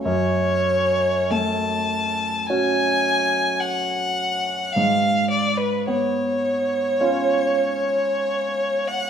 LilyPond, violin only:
\new Staff \with { instrumentName = "Violin" } { \time 4/4 \key cis \phrygian \tempo 4 = 53 cis''4 a''4 gis''4 fis''4 | eis''8 d''16 b'16 cis''2~ cis''8. fis''16 | }